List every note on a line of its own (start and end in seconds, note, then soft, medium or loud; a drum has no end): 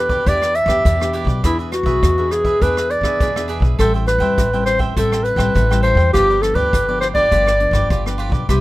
0.00 0.18 E2 medium
0.00 0.24 B2 soft
0.00 0.22 B3 medium
0.00 0.22 D4 medium
0.00 0.10 G4 soft
0.00 0.23 G4 medium
0.00 0.29 B4 medium
0.10 0.25 G4 soft
0.10 0.25 B4 medium
0.10 0.24 D5 medium
0.10 kick medium
0.26 0.64 E2 medium
0.26 0.82 E3 soft
0.26 0.54 B3 medium
0.26 0.54 D4 medium
0.26 0.40 E4 medium
0.26 0.40 G4 medium
0.26 0.55 G4 medium
0.26 0.41 B4 medium
0.26 0.57 D5 medium
0.26 0.40 D5 medium
0.26 kick medium
0.26 closed hi-hat medium
0.41 0.54 G4 soft
0.41 0.54 B4 soft
0.41 0.54 D5 soft
0.41 cross-stick medium
0.41 closed hi-hat soft
0.55 1.15 E5 medium
0.55 muted cavaquinho stroke soft
0.55 closed hi-hat soft
0.66 0.80 E2 medium
0.66 0.94 B3 medium
0.66 0.94 D4 medium
0.66 0.95 G4 medium
0.66 0.84 G4 medium
0.66 0.83 B4 medium
0.66 0.83 D5 medium
0.66 kick medium
0.66 cross-stick medium
0.66 closed hi-hat soft
0.85 1.23 E2 medium
0.85 1.41 B2 medium
0.85 0.99 E4 soft
0.85 0.99 G4 soft
0.85 0.99 B4 medium
0.85 0.99 D5 medium
0.85 kick medium
0.85 closed hi-hat medium
1.00 1.40 B3 medium
1.00 1.40 D4 medium
1.00 1.40 G4 medium
1.00 1.13 G4 soft
1.00 1.14 B4 soft
1.00 1.14 D5 soft
1.00 cross-stick medium
1.13 1.28 E4 medium
1.13 1.28 G4 medium
1.13 1.27 B4 medium
1.13 1.26 D5 medium
1.13 closed hi-hat soft
1.25 1.39 B1 medium
1.25 1.42 B4 soft
1.25 1.42 D5 soft
1.25 kick medium
1.29 1.43 G4 soft
1.44 1.81 E2 medium
1.44 2.00 E3 medium
1.44 1.72 B3 medium
1.44 1.57 D4 medium
1.44 1.72 D4 medium
1.44 1.58 E4 medium
1.44 1.58 G#4 medium
1.44 1.72 G#4 medium
1.44 1.58 B4 medium
1.44 1.58 E5 medium
1.44 kick medium
1.44 cross-stick medium
1.44 closed hi-hat medium
1.59 1.71 G#4 soft
1.59 1.71 B4 soft
1.59 1.71 E5 soft
1.59 closed hi-hat soft
1.72 2.33 F#4 medium
1.72 muted cavaquinho stroke soft
1.72 cross-stick medium
1.72 closed hi-hat soft
1.83 1.98 B1 medium
1.83 2.12 B3 medium
1.83 2.12 D4 medium
1.83 2.12 G#4 medium
1.83 2.16 B4 medium
1.83 2.15 E5 medium
1.83 kick medium
1.88 2.16 G#4 medium
2.03 2.53 E2 medium
2.03 2.59 B2 soft
2.03 kick medium
2.03 cross-stick medium
2.03 closed hi-hat medium
2.18 2.57 B3 medium
2.18 2.58 D4 medium
2.18 2.58 G#4 medium
2.18 2.45 G#4 soft
2.18 2.45 B4 soft
2.18 2.44 E5 soft
2.31 2.64 G#4 medium
2.31 cross-stick medium
2.31 closed hi-hat soft
2.45 2.60 G#4 medium
2.45 2.60 B4 medium
2.45 2.59 E5 medium
2.45 kick medium
2.61 2.99 E2 medium
2.61 3.17 E3 medium
2.61 3.01 B3 soft
2.61 2.75 D4 medium
2.61 3.01 D4 medium
2.61 2.75 G#4 medium
2.61 3.01 G#4 medium
2.61 2.92 B4 medium
2.61 2.76 B4 medium
2.61 2.76 E5 medium
2.61 kick medium
2.61 closed hi-hat medium
2.77 2.90 G#4 soft
2.77 2.90 B4 soft
2.77 2.90 E5 soft
2.77 cross-stick medium
2.77 closed hi-hat soft
2.90 3.50 D5 medium
2.90 muted cavaquinho stroke soft
2.90 closed hi-hat soft
3.01 3.16 E2 medium
3.01 3.29 B3 medium
3.01 3.29 D4 medium
3.01 3.30 G#4 medium
3.01 3.19 B4 medium
3.01 3.19 E5 medium
3.01 kick medium
3.01 cross-stick medium
3.06 3.19 G#4 medium
3.20 3.58 E2 medium
3.20 3.76 B2 medium
3.20 3.34 D4 soft
3.20 3.34 G#4 medium
3.20 3.35 B4 medium
3.20 3.35 E5 medium
3.20 kick medium
3.20 closed hi-hat medium
3.36 3.75 B3 medium
3.36 3.75 D4 medium
3.36 3.75 G#4 medium
3.36 3.47 G#4 soft
3.36 3.48 B4 soft
3.36 3.49 E5 medium
3.36 cross-stick medium
3.48 3.62 D4 medium
3.48 3.62 G#4 medium
3.48 3.62 B4 medium
3.48 3.61 E5 medium
3.48 closed hi-hat soft
3.60 3.74 B1 medium
3.60 3.78 G#4 soft
3.60 3.77 B4 soft
3.60 3.77 E5 soft
3.60 kick medium
3.79 4.17 A1 medium
3.79 4.35 A2 medium
3.79 4.19 G3 medium
3.79 4.19 C4 medium
3.79 4.19 E4 medium
3.79 3.92 A4 medium
3.79 3.93 A4 medium
3.79 3.93 C5 medium
3.79 3.93 E5 medium
3.79 3.93 G5 medium
3.79 kick medium
3.79 cross-stick medium
3.79 closed hi-hat medium
3.94 4.06 C5 soft
3.94 4.06 E5 soft
3.94 4.06 G5 soft
3.94 closed hi-hat soft
4.07 4.63 B4 medium
4.07 muted cavaquinho stroke soft
4.07 cross-stick medium
4.07 closed hi-hat soft
4.18 4.33 E2 medium
4.18 4.47 G3 medium
4.18 4.47 C4 medium
4.18 4.47 E4 medium
4.18 4.51 C5 medium
4.18 4.50 E5 medium
4.18 4.50 G5 medium
4.18 kick medium
4.18 closed hi-hat soft
4.38 4.88 A1 medium
4.38 4.94 E3 soft
4.38 kick medium
4.38 cross-stick medium
4.38 closed hi-hat medium
4.53 4.92 G3 medium
4.53 4.93 C4 medium
4.53 4.93 E4 medium
4.53 4.80 C5 soft
4.53 4.79 E5 soft
4.53 4.78 G5 soft
4.53 closed hi-hat soft
4.65 4.79 C5 medium
4.65 cross-stick medium
4.65 closed hi-hat soft
4.79 4.95 C5 medium
4.79 4.95 E5 medium
4.79 4.94 G5 medium
4.79 kick medium
4.96 5.34 A1 medium
4.96 5.52 A2 soft
4.96 5.36 G3 medium
4.96 5.36 C4 medium
4.96 5.36 E4 medium
4.96 5.25 A4 medium
4.96 5.10 A4 medium
4.96 5.11 C5 medium
4.96 5.11 E5 medium
4.96 5.11 G5 medium
4.96 kick medium
4.96 closed hi-hat medium
5.12 5.24 C5 soft
5.12 5.24 E5 soft
5.12 5.24 G5 soft
5.12 cross-stick medium
5.12 closed hi-hat soft
5.24 5.82 B4 medium
5.24 muted cavaquinho stroke soft
5.24 closed hi-hat soft
5.36 5.51 A1 medium
5.36 5.64 G3 medium
5.36 5.64 C4 medium
5.36 5.65 E4 medium
5.36 5.53 C5 soft
5.36 5.53 E5 medium
5.36 5.53 G5 medium
5.36 kick medium
5.36 cross-stick medium
5.36 closed hi-hat soft
5.55 5.93 A1 medium
5.55 6.11 E3 soft
5.55 5.69 A4 soft
5.55 5.69 C5 soft
5.55 5.69 E5 medium
5.55 5.69 G5 medium
5.55 kick medium
5.55 closed hi-hat medium
5.70 6.10 G3 medium
5.70 6.10 C4 medium
5.70 6.10 E4 medium
5.70 5.82 C5 soft
5.70 5.83 E5 soft
5.70 5.83 G5 soft
5.70 cross-stick medium
5.82 5.97 A4 medium
5.82 6.11 C5 medium
5.82 5.98 C5 medium
5.82 5.97 E5 medium
5.82 5.96 G5 medium
5.82 closed hi-hat soft
5.95 6.09 E2 medium
5.95 6.13 C5 soft
5.95 6.12 E5 soft
5.95 6.12 G5 soft
5.95 kick medium
6.13 6.52 G1 medium
6.13 6.70 G2 medium
6.13 6.39 F3 medium
6.13 6.39 B3 medium
6.13 6.39 D4 medium
6.13 6.27 F4 medium
6.13 6.43 G4 loud
6.13 6.28 G4 medium
6.13 6.28 B4 medium
6.13 6.28 D5 medium
6.13 kick medium
6.13 cross-stick medium
6.13 closed hi-hat medium
6.30 6.42 G4 soft
6.30 6.42 B4 soft
6.30 6.42 D5 soft
6.30 closed hi-hat soft
6.41 6.70 F3 medium
6.41 6.70 B3 medium
6.41 6.70 D4 medium
6.41 6.57 A4 medium
6.41 muted cavaquinho stroke soft
6.41 cross-stick medium
6.41 closed hi-hat soft
6.54 6.68 D2 medium
6.54 6.86 G4 medium
6.54 7.00 B4 medium
6.54 6.85 B4 medium
6.54 6.85 D5 medium
6.54 kick medium
6.73 7.23 G1 medium
6.73 7.29 D3 soft
6.73 kick medium
6.73 cross-stick medium
6.73 closed hi-hat medium
6.88 7.12 F3 medium
6.88 7.13 B3 medium
6.88 7.13 D4 medium
6.88 7.16 G4 soft
6.88 7.14 B4 soft
6.88 7.14 D5 soft
7.01 7.08 C5 medium
7.01 cross-stick medium
7.01 closed hi-hat soft
7.14 7.26 F3 medium
7.14 7.26 B3 medium
7.14 7.26 D4 medium
7.14 7.30 G4 medium
7.14 7.30 B4 medium
7.14 8.14 D5 medium
7.14 7.29 D5 medium
7.14 kick medium
7.31 7.69 G1 medium
7.31 7.87 G2 soft
7.31 7.49 F3 medium
7.31 7.49 B3 soft
7.31 7.49 D4 medium
7.31 7.45 F4 medium
7.31 7.45 G4 medium
7.31 7.45 B4 medium
7.31 7.45 D5 medium
7.31 kick medium
7.31 closed hi-hat medium
7.46 7.59 G4 soft
7.46 7.59 B4 soft
7.46 7.60 D5 soft
7.46 cross-stick medium
7.46 closed hi-hat soft
7.59 7.88 F3 medium
7.59 7.88 B3 medium
7.59 7.88 D4 medium
7.59 muted cavaquinho stroke soft
7.59 closed hi-hat soft
7.71 7.85 G1 medium
7.71 7.89 G4 soft
7.71 7.88 B4 medium
7.71 7.88 D5 medium
7.71 kick medium
7.71 cross-stick medium
7.90 8.28 G1 medium
7.90 8.46 D3 soft
7.90 8.04 F4 medium
7.90 8.04 G4 medium
7.90 8.04 B4 soft
7.90 8.05 D5 soft
7.90 kick medium
7.90 closed hi-hat medium
8.06 8.45 F3 medium
8.06 8.45 B3 medium
8.06 8.45 D4 medium
8.06 8.18 G4 soft
8.06 8.19 B4 soft
8.06 8.19 D5 soft
8.06 cross-stick medium
8.18 8.32 F4 medium
8.18 8.32 G4 medium
8.18 8.31 B4 medium
8.18 8.30 D5 medium
8.18 closed hi-hat soft
8.30 8.44 B1 medium
8.30 8.47 G4 soft
8.30 8.47 B4 soft
8.30 8.46 D5 soft
8.30 kick medium
8.49 8.61 C2 medium
8.49 8.61 C3 soft
8.49 8.61 G3 medium
8.49 8.61 B3 medium
8.49 8.61 E4 medium
8.49 8.61 G4 medium
8.49 8.61 B4 medium
8.49 8.61 C5 medium
8.49 8.61 E5 medium
8.49 kick medium
8.49 cross-stick medium
8.49 closed hi-hat medium